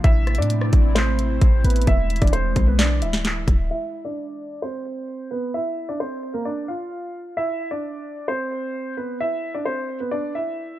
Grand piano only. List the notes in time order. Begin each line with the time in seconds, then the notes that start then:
0.04 E4 E5
0.38 D4 D5
0.95 C4 C5
1.65 B3 B4
1.88 E4 E5
2.22 D4 D5
2.33 C4 C5
2.67 B3 B4
2.79 D4 D5
3.02 E4 E5
3.71 E4 E5
4.05 D4 D5
4.62 C4 C5
5.31 B3 B4
5.54 E4 E5
5.89 D4 D5
6.00 C4 C5
6.34 A#3 A#4
6.45 D4 D5
6.68 F4 F5
7.37 E4 E5
7.71 D4 D5
8.28 C4 C5
8.97 B3 B4
9.21 E4 E5
9.54 D4 D5
9.65 C4 C5
10.00 B3 B4
10.11 D4 D5
10.35 E4 E5